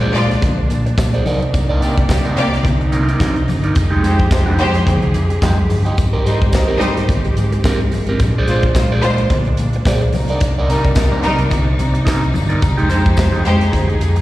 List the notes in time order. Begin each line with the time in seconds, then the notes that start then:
Already playing: G#3 A#3 D4
0.01 A#1 G#4 C5 D5
0.13 A#2 G#3 F4 D5, muted clean electric guitar stroke, closed hi-hat, tambourine
0.30 muted clean electric guitar stroke, snare, closed hi-hat
0.41 A#1, muted clean electric guitar stroke, kick, closed hi-hat, tambourine, muted conga, low conga
0.58 muted clean electric guitar stroke
0.70 A#2, closed hi-hat, tambourine, muted conga
0.86 muted clean electric guitar stroke, closed hi-hat
0.98 A#2, muted clean electric guitar stroke, kick, snare, clap, tambourine, high conga
1.14 G#4 C5 D5, closed hi-hat
1.26 C2 C3 D4 D#4 A#4 D5, open hi-hat, tambourine, high conga
1.42 muted clean electric guitar stroke, closed hi-hat
1.54 muted clean electric guitar stroke, kick, closed hi-hat, tambourine
1.69 D#4 A#4 D5
1.81 C3 A#3 D#4 G4 A#4 D5, closed hi-hat, tambourine, muted conga
1.98 muted clean electric guitar stroke, kick, closed hi-hat
2.09 C2 A#3 G4 D5, muted clean electric guitar stroke, kick, snare, clap, tambourine, high conga
2.24 C2 D#4 A#4 D5, closed hi-hat
2.37 C3 A#3 G4 D5, muted clean electric guitar stroke, closed hi-hat, tambourine
2.54 muted clean electric guitar stroke, snare, closed hi-hat
2.63 C2, muted clean electric guitar stroke, kick, closed hi-hat, muted conga, low conga
2.81 muted clean electric guitar stroke, closed hi-hat
2.92 C3 D#4 A#4 D5, closed hi-hat, tambourine, muted conga
3.08 D#4 A#4 D5, closed hi-hat
3.20 C3 D#4 A#4 D5, kick, snare, clap, tambourine, high conga
3.36 muted clean electric guitar stroke, closed hi-hat
3.48 G1, muted clean electric guitar stroke, open hi-hat, tambourine, high conga
3.64 D#4 A#4 D5, closed hi-hat
3.75 F1 F3 G4 G#4, muted clean electric guitar stroke, kick, closed hi-hat, tambourine
3.90 G#3 D#4 G4
4.03 F2 G#3 D#4 G4 C5, closed hi-hat, tambourine, muted conga
4.19 muted clean electric guitar stroke, kick, closed hi-hat
4.31 F1 G#3 G4 C5, muted clean electric guitar stroke, kick, snare, clap, tambourine, high conga
4.46 F1 G#3 D#4 G4
4.59 F2 G#3 G4 C5, muted clean electric guitar stroke, closed hi-hat, tambourine
4.74 muted clean electric guitar stroke, snare, closed hi-hat
4.87 F1, muted clean electric guitar stroke, kick, closed hi-hat, muted conga, low conga
5.02 muted clean electric guitar stroke, closed hi-hat
5.14 F2, closed hi-hat, tambourine, muted conga
5.30 muted clean electric guitar stroke, closed hi-hat
5.42 F2 G#3 D#4 G4, kick, snare, clap, tambourine, high conga
5.59 muted clean electric guitar stroke
5.70 G1, muted clean electric guitar stroke, open hi-hat, tambourine, high conga
5.85 G#3 D#4 G4, closed hi-hat
5.97 G#1 G#3 C4 G4, muted clean electric guitar stroke, kick, closed hi-hat, tambourine
6.13 C4 G4 A#4
6.25 G#2 G3 C4 D#4 G4 A#4 C5, closed hi-hat, tambourine, muted conga
6.41 muted clean electric guitar stroke, kick, closed hi-hat
6.51 G#1 G3 D#4 C5, muted clean electric guitar stroke, kick, snare, clap, tambourine, high conga
6.68 G#1 C4 G4 A#4
6.78 G#2 G3 D#4 C5, muted clean electric guitar stroke, closed hi-hat, tambourine
6.97 muted clean electric guitar stroke, snare, closed hi-hat
7.08 G#1, muted clean electric guitar stroke, kick, closed hi-hat, tambourine, muted conga, low conga
7.24 muted clean electric guitar stroke, closed hi-hat
7.37 G#2, closed hi-hat, tambourine, muted conga
7.52 muted clean electric guitar stroke, closed hi-hat
7.64 G#2 C4 G4 A#4, kick, snare, clap, tambourine, high conga
7.80 muted clean electric guitar stroke, closed hi-hat
7.92 G#1, muted clean electric guitar stroke, open hi-hat, tambourine, high conga
8.07 C4 G4 A#4, closed hi-hat
8.19 A#1 A#3 D4, muted clean electric guitar stroke, kick, closed hi-hat, tambourine
8.38 G#4 C5 D5
8.47 A#2 G#3 F4 G#4 C5 D5, closed hi-hat, tambourine
8.63 muted clean electric guitar stroke, kick, closed hi-hat
8.75 A#1 G#3 F4 C5, muted clean electric guitar stroke, kick, snare, clap, tambourine, high conga
8.91 A#1 G#4 C5 D5
9.02 A#2 G#3 F4 C5, muted clean electric guitar stroke, closed hi-hat, tambourine
9.18 muted clean electric guitar stroke, closed hi-hat
9.30 A#1, muted clean electric guitar stroke, kick, closed hi-hat, muted conga, low conga
9.45 muted clean electric guitar stroke, closed hi-hat
9.57 A#2, closed hi-hat, tambourine, muted conga
9.73 muted clean electric guitar stroke, closed hi-hat
9.85 A#2 G#4 C5 D5, kick, snare, clap, tambourine, high conga
10.01 muted clean electric guitar stroke, closed hi-hat
10.12 C2 C3 D4 D#4, muted clean electric guitar stroke, open hi-hat, tambourine, high conga
10.28 D#4 A#4 D5, closed hi-hat
10.40 muted clean electric guitar stroke, kick, closed hi-hat, tambourine
10.59 D#4 A#4 D5
10.69 C3 G3 D#4 A#4 D5, closed hi-hat, tambourine
10.84 muted clean electric guitar stroke, kick, closed hi-hat
10.95 C2 G3 D#4 A#4, muted clean electric guitar stroke, kick, snare, clap, tambourine, high conga
11.12 C2 D#4 A#4 D5
11.23 C3 G3 D#4 A#4, muted clean electric guitar stroke, closed hi-hat, tambourine
11.38 muted clean electric guitar stroke, closed hi-hat
11.51 C2, muted clean electric guitar stroke, kick, closed hi-hat, tambourine, muted conga, low conga
11.67 muted clean electric guitar stroke
11.79 C3, closed hi-hat, tambourine, muted conga
11.94 muted clean electric guitar stroke, closed hi-hat
12.05 C3 D#4 A#4 D5, kick, snare, clap, tambourine, high conga
12.22 muted clean electric guitar stroke, closed hi-hat
12.34 G1, muted clean electric guitar stroke, open hi-hat, tambourine, high conga
12.49 D#4 A#4 D5, closed hi-hat
12.62 F1 F3 G4 G#4, muted clean electric guitar stroke, kick, closed hi-hat, tambourine
12.77 G#3 D#4 G4, closed hi-hat
12.89 F2 G#3 D#4 G4 C5, closed hi-hat, tambourine
13.03 muted clean electric guitar stroke, kick, closed hi-hat
13.16 F1 G#3 G4 C5, muted clean electric guitar stroke, kick, snare, clap, tambourine, high conga
13.32 F1 G#3 D#4 G4, closed hi-hat
13.43 F2 G#3 G4 C5, muted clean electric guitar stroke, closed hi-hat
13.59 muted clean electric guitar stroke, snare, closed hi-hat
13.72 F1, muted clean electric guitar stroke, kick, closed hi-hat, muted conga, low conga
13.88 muted clean electric guitar stroke, closed hi-hat
14.01 F2, closed hi-hat, tambourine, muted conga
14.16 muted clean electric guitar stroke, closed hi-hat